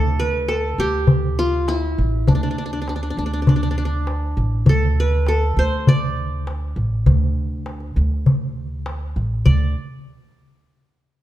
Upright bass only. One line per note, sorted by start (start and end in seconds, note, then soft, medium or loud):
0.00 0.74 D2 medium
0.78 1.94 D2 medium
1.98 2.26 A1 medium
2.27 3.13 D2 medium
3.17 4.33 D2 medium
4.37 4.65 A1 medium
4.66 5.52 D2 medium
5.57 6.72 D2 medium
6.76 7.04 A1 medium
7.06 7.92 D2 medium
7.96 9.12 D2 medium
9.16 9.44 A1 medium
9.46 9.74 D2 medium